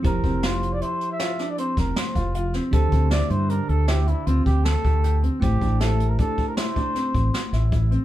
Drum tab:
HH |xxxxxxxxxxxxxx|xxxxxxxxxxxxxx|xxxxxxxxxxxxxx|
SD |--o---oo-oo--o|--o---o---o---|--o---o-o-oo--|
BD |oo-------o-o--|oo-------o-o--|oo--oo-o-o--o-|